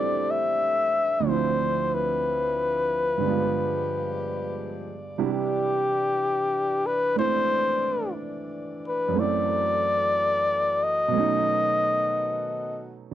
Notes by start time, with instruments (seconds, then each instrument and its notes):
Already playing: grand piano A2 E3 G3 A3 C4 D4 E4 G4 A4, saxophone section A3 D4 G4 A4 C5, flugelhorn D5
0.31 flugelhorn E5
1.20 grand piano D2 D3
1.25 grand piano F3 C4, saxophone section F3 C4 E4, flugelhorn C5
1.31 grand piano E4
1.94 flugelhorn B4
3.18 grand piano G2 D3
3.23 saxophone section G#3 G4 D5, grand piano G#3 B3
3.29 grand piano F4
5.18 grand piano C3 G3 D4 E4, saxophone section E3 D4
5.22 flugelhorn G4
6.86 flugelhorn B4
7.16 grand piano A3 C4 E4, flugelhorn C5
8.87 flugelhorn B4
9.08 grand piano F#2 F#3
9.14 grand piano A3 C4, saxophone section F#4 A4
9.20 grand piano E4, flugelhorn D5
10.83 flugelhorn D#5
11.08 grand piano B2 F#3
11.14 saxophone section D#3 B3 A4, grand piano A3 C#4
11.19 grand piano D#4